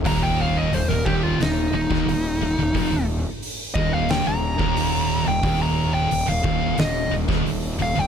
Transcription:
<<
  \new Staff \with { instrumentName = "Lead electric guitar" } { \time 4/4 \key ees \major \tempo 4 = 89 bes''16 g''16 f''16 ees''16 c''16 bes'16 g'16 f'16 ees'8 ees'4.~ | ees'8 r4 ees''16 f''16 g''16 bes''4. g''16~ | g''16 bes''8 g''8 f''8. ees''8 r4 f''16 g''16 | }
  \new Staff \with { instrumentName = "Distorted electric guitar" } { \clef bass \time 4/4 \key ees \major ees,4 ees,16 ees,16 ees,8 ees,8 ees,16 ees,16 ees,8 ees,16 ees,16 | f,16 ees,8 r8. ees,8. ees,8 ees,4 ees,16 | ees,4 ees,16 ees,16 ees,8 ees,8 ees,16 ees,16 ees,8 ees,16 ees,16 | }
  \new Staff \with { instrumentName = "Distorted electric guitar" } { \clef bass \time 4/4 \key ees \major ees,4 ees,16 ees,16 ees,8 ees,8 ees,16 ees,16 ees,8 ees,16 ees,16 | f,16 ees,8 r8. ees,8. ees,8 ees,4 ees,16 | ees,4 ees,16 ees,16 ees,8 ees,8 ees,16 ees,16 ees,8 ees,16 ees,16 | }
  \new Staff \with { instrumentName = "Distorted electric guitar" } { \clef bass \time 4/4 \key ees \major ees,4 ees,16 ees,16 ees,8 ees,8 ees,16 ees,16 ees,8 ees,16 ees,16 | f,16 ees,8 r8. ees,8. ees,8 ees,4 ees,16 | ees,4 ees,16 ees,16 ees,8 ees,8 ees,16 ees,16 ees,8 ees,16 ees,16 | }
  \new Staff \with { instrumentName = "Fingered electric bass" } { \clef bass \time 4/4 \key ees \major ees,,4 ees,,16 ees,,16 ees,,8 ees,,8 ees,,16 ees,,16 ees,,8 ees,,16 ees,,16 | f,,16 ees,,8 r8. ees,,8. ees,,8 ees,,4 ees,,16 | ees,,4 ees,,16 ees,,16 ees,,8 ees,,8 ees,,16 ees,,16 ees,,8 ees,,16 ees,,16 | }
  \new DrumStaff \with { instrumentName = "Drums" } \drummode { \time 4/4 <cymc hho bd>4 hho8 bd8 <hho sn>8. <bd sn>16 hho4 | <hho bd>4 hho8 bd8 <hho sn>8. bd16 hho4 | <hho bd>4 hho8 bd8 <hho sn>8. <bd sn>16 hho4 | }
>>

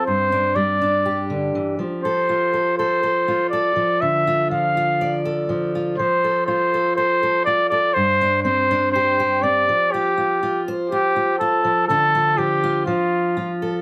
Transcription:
<<
  \new Staff \with { instrumentName = "Trumpet" } { \time 4/4 \key f \major \tempo 4 = 122 c''4 d''4. r4. | c''4. c''4. d''4 | e''4 f''4. r4. | c''4 c''4 c''4 d''8 d''8 |
c''4 c''4 c''4 d''4 | g'4. r8 g'4 a'4 | a'4 g'4 f'4. r8 | }
  \new Staff \with { instrumentName = "Steel-string acoustic guitar" } { \time 4/4 \key f \major << { r8 d'4 d'8 g'2 | a'4 a'8 a'8 a'4 a'8 r8 | r8 f'4 f'8 d''8 a'4 f'8 | r8 a'4 a'8 a'8 a'4 a'8 |
r8 d'4 d'8 g'8 g'4 r8 | f'8 r8 f'8 c''8 f'8 r8 f'8 r8 | <f f'>8 f'4 f'8 r4. a'8 | } \\ { g,4 g4. d8 e8 f8~ | f8 f'2 f'4 f8 | d4 f2 f4 | f4 f'2 f'4 |
g,4 c'2 c'8 f8~ | f8 f'8 r4. f'8 r8 f8 | d4 f4 f4 f'4 | } >> }
>>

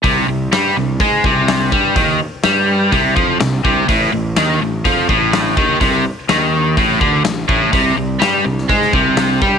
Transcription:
<<
  \new Staff \with { instrumentName = "Overdriven electric guitar" } { \clef bass \time 4/4 \key c \dorian \tempo 4 = 125 c8 c8 g8 c8 aes8 c4 g8 | ees8 r8 g4 c8 f8 c8 c8 | a,8 a,8 ees8 a,8 f8 a,4 ees8 | c8 r8 ees4 a,8 d8 a,8 a,8 |
c8 c8 g8 c8 aes8 c4 g8 | }
  \new Staff \with { instrumentName = "Fingered electric bass" } { \clef bass \time 4/4 \key c \dorian c,8 c,8 g,8 c,8 aes,8 c,4 g,8 | ees,8 r8 g,4 c,8 f,8 c,8 c,8 | a,,8 a,,8 ees,8 a,,8 f,8 a,,4 ees,8 | c,8 r8 ees,4 a,,8 d,8 a,,8 a,,8 |
c,8 c,8 g,8 c,8 aes,8 c,4 g,8 | }
  \new DrumStaff \with { instrumentName = "Drums" } \drummode { \time 4/4 <hho bd>4 <hho sn>4 <hho bd>8 bd8 <hho sn>8 bd8 | <hho bd>4 <hho sn>4 <hho bd>8 bd8 <hho sn>8 bd8 | <hho bd>4 <hho sn>4 <hho bd>8 bd8 <hho sn>8 bd8 | <hho bd>4 <hho sn>4 <hho bd>8 bd8 <hho sn>8 bd8 |
<hho bd>4 <hho sn>8. sn16 <hho bd>16 sn16 bd8 <hho sn>8 bd8 | }
>>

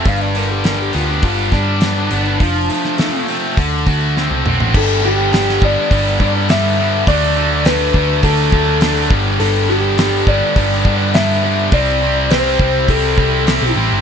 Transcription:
<<
  \new Staff \with { instrumentName = "Electric slide guitar" } { \time 4/4 \key g \mixolydian \tempo 4 = 103 r1 | r1 | \key g \major a'8 g'4 d''4. e''4 | d''4 b'4 a'4. r8 |
a'8 g'4 d''4. e''4 | d''4 c''4 a'4. r8 | }
  \new Staff \with { instrumentName = "Lead electric guitar" } { \time 4/4 \key g \mixolydian f''16 d''16 bes'16 g'16 bes'16 g'16 f'16 d'16 f'8 d'4.~ | d'4. r2 r8 | \key g \major r1 | r1 |
r1 | r1 | }
  \new Staff \with { instrumentName = "Distorted electric guitar" } { \clef bass \time 4/4 \key g \mixolydian g,8 d8 g8 b8 g8 d'8 b8 d'8 | f8 f8 a8 c'8 d8 fis'8 c'8 fis'8 | \key g \major <g, d g b d'>8 <g, d g b d'>8 <g, d g b d'>8 <g, d g b d'>8 <g, d g b d'>8 <g, d g b d'>8 <g, d g b d'>8 <g, d g b d'>8 | <d fis a d'>8 <d fis a d'>8 <d fis a d'>8 <d fis a d'>8 <d fis a d'>8 <d fis a d'>8 <d fis a d'>8 <g, d g b d'>8 |
<g, d g b d'>8 <g, d g b d'>8 <g, d g b d'>8 <g, d g b d'>8 <g, d g b d'>8 <g, d g b d'>8 <g, d g b d'>8 <g, d g b d'>8 | <c g c' e'>8 <c g c' e'>8 <c g c' e'>8 <c g c' e'>8 <c g c' e'>8 <c g c' e'>8 <c g c' e'>8 <c g c' e'>8 | }
  \new Staff \with { instrumentName = "Distorted electric guitar" } { \clef bass \time 4/4 \key g \mixolydian g,8 g8 d8 g8 d'8 g8 d8 b8 | f8 a8 f8 a8 d8 a8 d8 c'8 | \key g \major <g, d g>8 <g, d g>8 <g, d g>8 <g, d g>8 <g, d g>8 <g, d g>8 <g, d g>8 <g, d g>8 | <d a d'>8 <d a d'>8 <d a d'>8 <d a d'>8 <d a d'>8 <d a d'>8 <d a d'>8 <g, d g>8 |
<g, d g>8 <g, d g>8 <g, d g>8 <g, d g>8 <g, d g>8 <g, d g>8 <g, d g>8 <g, d g>8 | <c g c'>8 <c g c'>8 <c g c'>8 <c g c'>8 <c g c'>8 <c g c'>8 <c g c'>8 <c g c'>8 | }
  \new Staff \with { instrumentName = "Picked electric bass" } { \clef bass \time 4/4 \key g \mixolydian g,,4. d,8 g,,8 g,4 g,,8 | f,,8 r4. d,8 d,8. c,16 b,,16 a,,16 | \key g \major g,,4. g,,16 r16 g,,8 g,4. | d,4. d,8 d,8 d,4 g,,8 |
g,,4. g,,16 r16 g,,8 g,4. | c,4. c,8 c,8 c,8. b,,16 a,,16 g,,16 | }
  \new DrumStaff \with { instrumentName = "Drums" } \drummode { \time 4/4 <hho bd>8 hho8 <hho sn>8 hho8 <hho bd>8 <hho bd sn>8 <hho sn>8 hho8 | <hho bd>8 hho16 sn16 <hho sn>8 hho8 <hho bd>8 <hho bd>8 sn16 tommh16 toml16 tomfh16 | <cymc bd>4 <hho sn>16 sn16 bd8 <hho bd>8 bd8 <hho sn>4 | <hho bd>4 <hho sn>8 bd8 <hho bd>8 bd8 <hho sn>8 bd8 |
hho4 <hho sn>8 bd8 <hho bd>8 bd8 <hho sn>4 | <hho bd>4 <hho sn>8 bd8 <hho bd>8 bd8 <hho sn>4 | }
>>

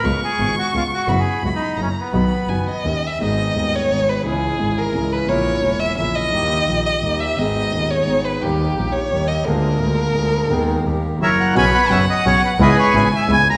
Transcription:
<<
  \new Staff \with { instrumentName = "Violin" } { \time 3/4 \key b \major \tempo 4 = 172 cis'''2. | b''2 ais''4 | b''4 gis''8 dis''4 e''8 | \key gis \minor dis''4. cis''4 b'8 |
gis'4. ais'4 b'8 | cis''4. e''8 e''8 dis''8~ | dis''4. dis''4 e''8 | dis''4. cis''4 b'8 |
g'4. cis''4 dis''8 | ais'2.~ | ais'2 r4 | \key b \major b''4 fis''2 |
gis''2. | }
  \new Staff \with { instrumentName = "Bandoneon" } { \time 3/4 \key b \major << { ais'8 gis'4 fis'8 eis'8 fis'8~ | fis'16 gis'8. fis'16 dis'8. cis'8 b8~ | b2 r4 | \key gis \minor r2. |
r2. | r2. | r2. | r2. |
r2. | r2. | r2 e''8 fis''8 | \key b \major gis''8 fis''8 e''8 dis''8 cis''8 b'8 |
dis''8 cis''8 gis''8 e''8 gis''8 ais''8 | } \\ { r2. | r2. | r2. | r2. |
r2. | r2. | r2. | r2. |
r2. | r2. | r2 <ais' cis''>4 | <b' cis''>4. r4. |
<gis' b'>4. r4. | } >> }
  \new Staff \with { instrumentName = "Bandoneon" } { \time 3/4 \key b \major r2. | r2. | r2. | \key gis \minor <b dis' gis'>4 <b dis' gis'>4 <b dis' gis'>4 |
<cis' e' gis'>4 <cis' e' gis'>4 <cis' e' gis'>4 | <cis' e' ais'>4 <cis' e' ais'>4 <cis' e' ais'>4 | <ais dis' g'>4 <ais dis' g'>4 <ais dis' g'>4 | <b dis' gis'>4 <b dis' gis'>4 <b dis' gis'>4 |
<ais dis' g'>4 <ais dis' g'>4 <ais dis' g'>4 | <ais d' gis'>4 <ais d' gis'>4 <ais d' gis'>4 | <b dis' gis'>4 <ais dis' g'>4 <ais e' fis'>4 | \key b \major <b cis' fis'>8 r8 <b cis' fis'>8 r8 <b cis' fis'>8 r8 |
<b cis' e'>8 r8 <b cis' e'>8 r8 <b cis' e'>8 r8 | }
  \new Staff \with { instrumentName = "Grand piano" } { \clef bass \time 3/4 \key b \major <cis, cis gis b eis'>8 r8 <gis,, gis, cis gis b eis'>8 r8 <cis, cis gis b eis'>8 r8 | <fis, cis fis b e'>8 r8 <cis, cis fis b e'>8 r8 <fis, cis fis ais e'>8 r8 | <b,, b, dis fis b fis'>8 r8 <fis,, fis, dis fis b fis'>8 r8 <dis, dis ais cis' g'>8 r8 | \key gis \minor <gis,, gis, dis gis b gis'>4 <dis,, dis, dis gis b gis'>4 <gis,, gis, dis gis b gis'>4 |
<cis, cis e gis e'>4 <gis,, gis, cis e gis e'>4 <cis, cis e gis e'>4 | <ais,, ais, cis e ais e'>4 <e,, e, cis e ais e'>4 <ais,, ais, cis e ais e'>4 | <dis, dis g ais g'>4 <ais,, ais, dis g ais g'>4 <dis, dis g ais g'>4 | <gis,, gis, dis gis b gis'>4 <dis,, dis, dis gis b gis'>4 <gis,, gis, dis gis b gis'>4 |
<dis, dis g ais g'>4 <ais,, ais, dis g ais g'>4 <dis, dis g ais g'>4 | <d, d gis ais eis'>4 <d, d gis ais eis'>4 <d, d gis ais eis'>4 | <dis, dis gis b gis'>4 <dis, dis g ais g'>4 <fis, cis fis ais e'>4 | \key b \major <b,, b, cis fis b fis'>8 r8 <fis,, fis, cis fis b fis'>8 r8 <b,, b, cis fis b fis'>8 r8 |
<cis, cis gis b e'>8 r8 <gis,, gis, cis gis b e'>8 r8 <cis, cis gis b e'>8 r32 cis,32 r16 | }
  \new Staff \with { instrumentName = "Double bass" } { \clef bass \time 3/4 \key b \major cis,8 r8 gis,,8 r8 cis,8 r8 | fis,,8 r8 cis,8 r8 fis,,8 r8 | b,,8 r8 fis,,8 r8 dis,8 r8 | \key gis \minor gis,,4 dis,4 gis,,4 |
cis,4 gis,,4 cis,4 | ais,,4 e,,4 ais,,4 | dis,4 ais,,4 dis,4 | gis,,4 dis,4 gis,,4 |
dis,4 ais,,4 dis,4 | d,4 d,4 d,4 | dis,4 dis,4 fis,,4 | \key b \major b,,8 r8 fis,,8 r8 b,,8 r8 |
cis,8 r8 gis,,8 r8 cis,8 d,8 | }
>>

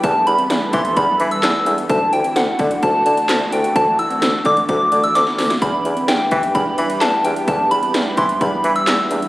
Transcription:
<<
  \new Staff \with { instrumentName = "Soft synth lead" } { \time 4/4 \key e \minor \tempo 4 = 129 a''8 b''4 c'''8 b''8. e'''16 e'''8. r16 | a''8 g''8 fis''4 a''8 a''4 g''8 | a''8 e'''4 d'''8 d'''8. e'''16 d'''8. r16 | b''4 g''4 b''8 b''8 a''8 g''8 |
a''8 b''4 c'''8 b''8. e'''16 e'''8. r16 | }
  \new Staff \with { instrumentName = "Synth arpeggio sound" } { \time 4/4 \key e \minor r16 d'16 e'16 c'16 d'16 e'8 d'16 d'16 e'16 d'8 e'16 e'16 d'16 e'16 | r16 d'16 e'16 c'16 d'16 e'8 d'16 d'16 fis'16 d'8 fis'16 fis'16 e'16 fis'16 | r16 d'16 e'16 c'16 d'16 e'8 d'16 d'16 fis'16 d'8 fis'16 fis'16 e'16 fis'16 | r16 d'16 e'16 c'16 d'16 e'8 d'16 d'16 e'16 d'8 e'16 e'16 d'16 e'16 |
r16 d'16 e'16 c'16 d'16 e'8 d'16 d'16 e'16 d'8 e'16 e'16 d'16 e'16 | }
  \new Staff \with { instrumentName = "Analog synth pad" } { \time 4/4 \key e \minor << { <g b a'>1 | <a d' fis'>1~ | <a d' fis'>1 | <g b g'>1~ |
<g b g'>1 | } \\ { e1~ | e1~ | e1~ | e1~ |
e1 | } >> }
  \new Staff \with { instrumentName = "Bassoon" } { \clef bass \time 4/4 \key e \minor e,16 r16 e,16 r16 e,16 r16 e16 r16 e,16 r16 e16 r16 e,16 r16 e,16 r16 | d,16 r16 d,16 r16 d,16 r16 d16 r16 d,16 r16 d16 r16 d,16 r16 d,16 r16 | d,16 r8. d,16 r16 d16 r16 d,16 r16 d16 r16 d,16 r16 d,16 r16 | e,16 r16 e,16 r16 e,16 r16 e16 r16 e,16 r16 e16 r16 e,16 r16 e,16 r16 |
e,16 r16 e,16 r16 e,16 r16 e16 r16 e,16 r16 e16 r16 e,16 r16 e,16 r16 | }
  \new DrumStaff \with { instrumentName = "Drums" } \drummode { \time 4/4 <hh bd>8 hh16 hh16 <hh sn>8 <hh bd>16 hh16 <hh bd>8 hh16 hh16 <hc hh sn>8 hh16 hh16 | <hh bd>8 hh16 hh16 <hh sn>8 <hh bd>16 hh16 <hh bd>8 hh16 hh16 <hc hh sn>8 hh16 hh16 | <hh bd>8 hh16 hh16 <hh sn>8 <hh bd>16 hh16 <hh bd>8 hh16 hh16 <hh sn>16 sn16 <hho sn>16 <hh sn>16 | <hh bd>8 hh16 hh16 <hh sn>8 <hh bd>16 hh16 <hh bd>8 hh16 hh16 <hc hh sn>8 hh16 hh16 |
<hh bd>8 hh16 hh16 <hh sn>8 <hh bd>16 hh16 <hh bd>8 hh16 hh16 <hc hh sn>8 hh16 hh16 | }
>>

